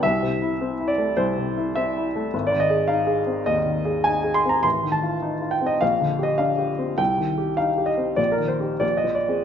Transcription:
\new Staff \with { instrumentName = "Grand piano" } { \time 4/4 \key a \dorian \tempo 4 = 103 << { e''4. d''8 c''4 e''4~ | \key aes \lydian e''16 d''16 ees''8 f''4 ees''4 aes''8 c'''16 bes''16 | c'''8 a''4 g''16 ees''16 f''8. ees''16 f''4 | g''4 f''8 ees''8 d''16 bes'16 c''8 d''16 ees''16 d''8 | } \\ { \tuplet 3/2 { c,8 c8 e'8 c'8 e'8 a8 c,8 c8 e'8 c'8 e'8 a8 } | \tuplet 3/2 { aes,,8 ees8 aes'8 ees'8 aes'8 c'8 ees,8 ees8 aes'8 ees'8 aes'8 c'8 } | \tuplet 3/2 { a,,8 ees8 f'8 ees'8 f'8 c'8 bes,,8 d8 g'8 d'8 g'8 c'8 } | \tuplet 3/2 { c,8 ees8 g'8 ees'8 g'8 c'8 bes,,8 ees8 <ees' g'>8 bes,,8 f8 <c' aes'>8 } | } >> }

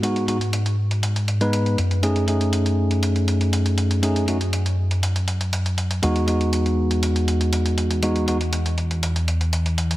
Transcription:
<<
  \new Staff \with { instrumentName = "Tine electric piano" } { \time 4/4 \key fis \dorian \tempo 4 = 120 <gis b dis' fis'>8 <gis b dis' fis'>16 r2 <gis b dis' b'>8. r8 | <a cis' dis' gis'>8 <a cis' dis' gis'>2.~ <a cis' dis' gis'>8 | <a cis' dis' gis'>8 <a cis' dis' fis'>16 r2. r16 | <gis b dis' fis'>8 <gis b dis' fis'>2.~ <gis b dis' fis'>8 |
<gis b dis' fis'>8 <gis b dis' fis'>16 r2. r16 | }
  \new Staff \with { instrumentName = "Analog synth bass" } { \clef bass \time 4/4 \key fis \dorian gis,2.~ gis,8 fis,8~ | fis,1~ | fis,1 | e,1~ |
e,1 | }
  \new DrumStaff \with { instrumentName = "Drums" } \drummode { \time 4/4 hh16 hh16 hh16 hh16 hh16 hh8 hh16 hh16 hh16 hh16 hh16 hh16 hh16 hh16 hh16 | hh16 hh16 hh16 hh16 hh16 hh8 hh16 hh16 hh16 hh16 hh16 hh16 hh16 hh16 hh16 | hh16 hh16 hh16 hh16 hh16 hh8 hh16 hh16 hh16 hh16 hh16 hh16 hh16 hh16 hh16 | hh16 hh16 hh16 hh16 hh16 hh8 hh16 hh16 hh16 hh16 hh16 hh16 hh16 hh16 hh16 |
hh16 hh16 hh16 hh16 hh16 hh16 hh16 hh16 hh16 hh16 hh16 hh16 hh16 hh16 hh16 hh16 | }
>>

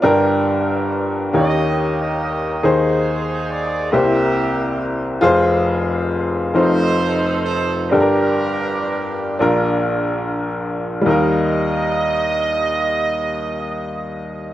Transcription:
<<
  \new Staff \with { instrumentName = "Horn section" } { \time 6/8 \key ees \major \tempo 4. = 45 << { r4. ees''8. ees''16 ees''8 | c''8. c''16 d''8 e''4 r8 | r4. c''4 c''8 | bes'2 r4 |
ees''2. | } \\ { r4. <g' bes'>4. | <ees' aes'>4. <g' bes'>4. | r4. <ees' a'>4. | <d' g'>2 r4 |
r2. | } >> }
  \new Staff \with { instrumentName = "Upright piano" } { \time 6/8 \key ees \major <d' g' bes'>4 r8 <bes des' ees' g' des''>4 r8 | <ees' aes' c''>4 r8 <bes c' e' g' c''>4 r8 | <f' aes' c''>4 r8 <a c' ees' f' c''>4 r8 | <d' g' a' bes'>4 r8 <d' f' bes'>4 r8 |
<g bes ees' bes'>2. | }
  \new Staff \with { instrumentName = "Upright piano" } { \clef bass \time 6/8 \key ees \major <g,, g,>4. <ees, ees>4. | <ees, ees>4. <c, c>4. | <f,, f,>4. <f,, f,>4. | <g,, g,>4. <bes,, bes,>4. |
ees,2. | }
>>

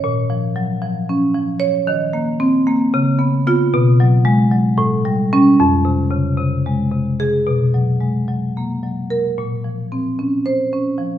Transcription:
<<
  \new Staff \with { instrumentName = "Marimba" } { \time 7/8 \key bes \minor \tempo 4 = 113 r2. des''8 | r4 c'8 r4. f'8 | r4 aes8 r4. cis'8 | r2. aes'8 |
r2. bes'8 | r2 c''4 r8 | }
  \new Staff \with { instrumentName = "Marimba" } { \clef bass \time 7/8 \key bes \minor bes,8 f8 ges8 f8 des'8 f4 | ees8 bes4 bes8 des8 ces'8 ces'8 | b,8 fis4 fis8 a,8 g8 g8 | f,8 c8 des8 c8 aes8 c4 |
b,8 fis8 aes8 fis8 bes8 fis4 | bes,8 f8 c'8 des'4 des'8 f8 | }
>>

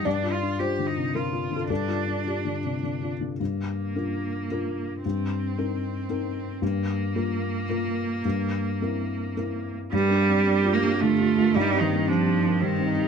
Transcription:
<<
  \new Staff \with { instrumentName = "Marimba" } { \time 3/4 \key g \minor \tempo 4 = 110 r2. | r2. | r2. | r2. |
r2. | r2. | g'16 bes'16 f''16 g'16 bes'16 bes'16 g'16 d''16 f''16 g'16 r16 bes'16 | ees'16 g'16 c''16 ees'16 g'16 g'16 ees'16 bes'16 c''16 ees'16 r16 g'16 | }
  \new Staff \with { instrumentName = "Viola" } { \time 3/4 \key g \minor r2. | r2. | r2. | r2. |
r2. | r2. | r4 g'4 f'4 | ees'4 d'4 c'8 ees'8 | }
  \new Staff \with { instrumentName = "Felt piano" } { \time 3/4 \key g \minor << { d''4 c''4 bes'8. a'16 | a'4 g'4 r4 | r2. | r2. |
r2. | r2. | r2. | r2. | } \\ { \tuplet 3/2 { g,8 f'8 d'8 f'8 d8 c8 d8 f'8 d8 } | \tuplet 3/2 { g,8 f'8 d'8 f'8 d8 c8 d8 f'8 d8 } | g,4 <d' f' bes'>4 <d' f' bes'>4 | g,4 <c' ees' bes'>4 <c' ees' bes'>4 |
g,4 <bes f' bes'>4 <bes f' bes'>4 | g,4 <c' e' bes'>4 <c' e' bes'>4 | \tuplet 3/2 { g,8 d'8 c'8 d'8 f'8 d'8 d8 d'8 f'8 } | \tuplet 3/2 { g,8 c'8 bes8 c'8 ees'8 c'8 g8 c'8 ees'8 } | } >> }
  \new Staff \with { instrumentName = "Cello" } { \time 3/4 \key g \minor d'8 f'8 g'8 ees'8 f'4 | d'2~ d'8 r8 | bes2. | c'2. |
bes2.~ | bes2~ bes8 r8 | g4. bes8 a4 | g8 ees8 f4 ees4 | }
>>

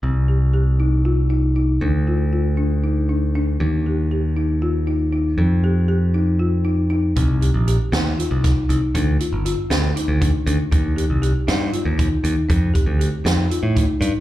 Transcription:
<<
  \new Staff \with { instrumentName = "Marimba" } { \time 7/8 \key c \minor \tempo 4 = 118 c'8 g'8 g'8 ees'8 f'8 ees'8 ees'8 | d'8 f'8 f'8 d'8 ees'8 d'8 d'8 | ees'8 g'8 g'8 ees'8 f'8 ees'8 ees'8 | c'8 g'8 g'8 ees'8 f'8 ees'8 ees'8 |
c'8 g'8 g'8 ees'8 f'8 ees'8 ees'8 | d'8 f'8 f'8 d'8 ees'8 d'8 d'8 | ees'8 g'8 g'8 ees'8 f'8 ees'8 ees'8 | c'8 g'8 g'8 ees'8 f'8 ees'8 ees'8 | }
  \new Staff \with { instrumentName = "Picked electric bass" } { \clef bass \time 7/8 \key c \minor c,2.~ c,8 | d,2.~ d,8 | ees,2.~ ees,8 | f,2.~ f,8 |
c,8. bes,,8 r16 ees,8 r16 c,8 r16 c,16 r16 | d,8 r16 g,,8 r16 d,8 r16 d,8 r16 d,16 r16 | ees,8. c,8 r16 g,8 r16 ees,8 r16 ees,16 r16 | f,8 r16 d,8 r16 f,8 r16 a,8 r16 g,16 r16 | }
  \new DrumStaff \with { instrumentName = "Drums" } \drummode { \time 7/8 r4. r4 r4 | r4. r4 r4 | r4. r4 r4 | r4. r4 r4 |
<hh bd>8 hh8 hh8 <hh sn>8 hh8 <hh bd sn>8 hh8 | <hh bd>8 hh8 hh8 <hh sn>8 hh8 <hh bd>8 hh8 | <hh bd>8 hh8 hh8 <hh sn>8 hh8 <hh bd>8 hh8 | <hh bd>8 <hh bd>8 hh8 <hh sn>8 hh8 <hh bd>8 hh8 | }
>>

